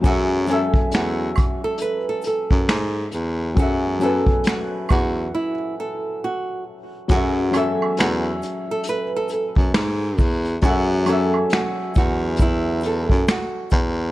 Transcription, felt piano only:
X:1
M:4/4
L:1/8
Q:"Swing 16ths" 1/4=68
K:F#m
V:1 name="Felt piano"
[F,CGAe] [F,CAeg]3 z4 | [F,CGAe] [F,CABg]3 z4 | [F,CGAe] [F,CAeg]3 z4 | [F,CGAe] [F,CAeg]3 z4 |]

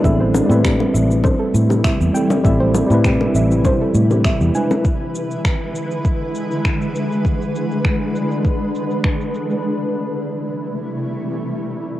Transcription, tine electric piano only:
X:1
M:4/4
L:1/16
Q:1/4=100
K:Am
V:1 name="Tine electric piano"
[G,CEA]3 [G,CEB]8- [G,CEB]3 [G,CEA]2 | [G,CEA]3 [G,CEB]8- [G,CEB]3 [^G,DEB]2 | z16 | z16 |
z16 |]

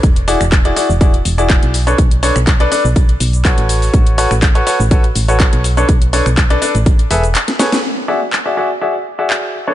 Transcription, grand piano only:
X:1
M:4/4
L:1/16
Q:1/4=123
K:Emix
V:1 name="Grand piano"
z2 [EFGd] z2 [EFGd] [EFGd] z [EFGd] z2 [EFGd]3 z [DABc] | z2 [DABc] z2 [DABd] [DABd] z4 z [FABc]4- | [FABc]2 [FABc] z2 [FABc] [FABc] z [FABc] z2 [FABc]3 z [DABc] | z2 [DABc] z2 [DABd] [DABd] z3 [GABe] z3 [GABc] z |
z2 [FGde] z2 [FGde] [FGde] z [FGde] z2 [FGde]3 z [DABc] |]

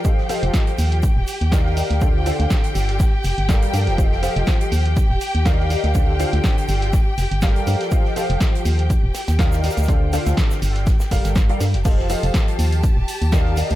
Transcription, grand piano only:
X:1
M:4/4
L:1/16
Q:"Swing 16ths" 1/4=122
K:Fmix
V:1 name="Grand piano"
[F,GAcef]2 [F,GAcef]6 z4 [E,GBdef]2 [GBdef]2 | [D,FAcdf]2 [D,FAcdf]6 z4 [G,GABdf]2 [F,GABdf]2 | [F,GAcef]2 [F,GAcef]6 z4 [E,GBdef]2 [GBdef]2 | [D,FAcdf]2 [D,FAcdf]6 z4 [G,GABdf]2 [F,GABdf]2 |
[F,GAcef]2 [F,GAcef]6 z4 [E,GBdef]2 [GBdef]2 | [D,FAcdf]2 [D,FAcdf]6 z2 [G,GABdf]3 [G,GABdf] z2 | [F,GAcef]2 [F,GAcef]6 z4 [E,GBdef]2 [GBdef]2 |]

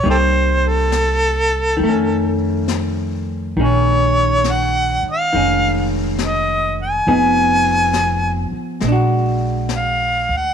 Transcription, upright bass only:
X:1
M:4/4
L:1/8
Q:"Swing" 1/4=68
K:Bbm
V:1 name="Upright bass" clef=bass
C,,4 F,,4 | B,,,3 z F,,,4 | F,,,3 z B,,,3 =D,, |]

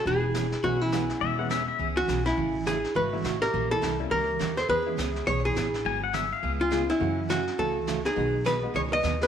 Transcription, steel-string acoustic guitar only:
X:1
M:4/4
L:1/8
Q:"Swing" 1/4=207
K:E
V:1 name="Steel-string acoustic guitar"
[E,B,CG] z [E,B,CG] z [E,B,CG] z [E,B,CG] z | [E,B,CG] z [E,B,CG] z [E,B,CG] z [E,B,CG] z | [C,E,A,CF] z [C,E,A,CF] z [C,E,A,CF] z [C,E,A,CF] z | [E,^A,C=G^A] z [E,A,CGA] z [E,A,CGA] z [E,A,CGA] z |
[E,B,CG] z [E,B,CG] z [E,B,CG] z [E,B,CG] z | [=D,F,B,FG] z [D,F,B,FG] z [C,G,B,^EG] z [C,G,B,EG] z | [C,E,A,CF] z [C,E,A,CF] z [C,E,A,CF] z [C,E,A,CF] z | [B,,D,F,B,DG] z [B,,D,F,B,DG] z [B,,D,F,B,DG] z [B,,D,F,B,DG] z |]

